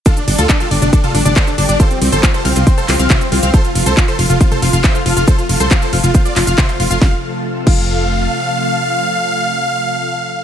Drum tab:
CC |----------------|----------------|----------------|----------------|
RD |x-x-x-x-x-x---x-|x-x-x-x-x-x-x-x-|x-x-x-x-x-x-x-x-|x-x-x-x-x-x-x-x-|
HH |xxoxxxoxxxoxxxox|xxoxxxoxxxoxxxox|xxo-xxoxxxo-xxox|xxoxxxoxxxo-xxox|
SH |xx-xxx-xxx-xxx-x|xx-xxx-xxx-xxx-x|xx-xxx-xxx-xxx-x|xx-xxx-xxx-xxx-x|
CP |----x-------x---|----x-----x-x---|----x-------x---|----x-----x-x---|
SD |----------------|----------------|----------------|----------------|
T2 |-------o-o-o----|-------o----o---|-------o-o-o----|-------o----o---|
BD |o---o---o---o---|o---o---o---o---|o---o---o---o---|o---o---o---o---|

CC |------x---------|----------------|
RD |----------------|----------------|
HH |----------------|----------------|
SH |----------------|----------------|
CP |----------------|----------------|
SD |o---------------|----------------|
T2 |----------------|----------------|
BD |o-----o---------|----------------|